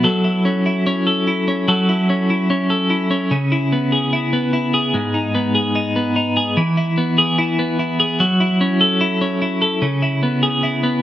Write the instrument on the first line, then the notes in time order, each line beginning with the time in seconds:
clean electric guitar
Already playing: E4
0.04 F#3 A4
0.24 E4
0.45 C#4
0.66 E4
0.86 C#4
1.07 A4
1.27 E4
1.48 C#4
1.68 F#3 A4
1.89 E4
2.10 C#4
2.30 E4
2.50 C#4
2.70 A4
2.90 E4
3.11 C#4
3.31 C#3
3.52 E4
3.72 B3
3.92 G#4
4.13 E4
4.33 B3
4.53 E4
4.74 G#4
4.94 G#2
5.14 D#4
5.35 B3
5.55 G#4
5.75 D#4
5.96 B3
6.16 D#4
6.37 G#4
6.57 E3
6.77 E4
6.98 B3
7.18 G#4
7.38 E4
7.59 B3
7.79 E4
8.00 G#4
8.20 F#3
8.40 E4
8.61 C#4
8.81 A4
9.01 E4
9.21 C#4
9.42 E4
9.62 A4
9.82 C#3
10.02 E4
10.23 B3
10.43 G#4
10.63 E4
10.83 B3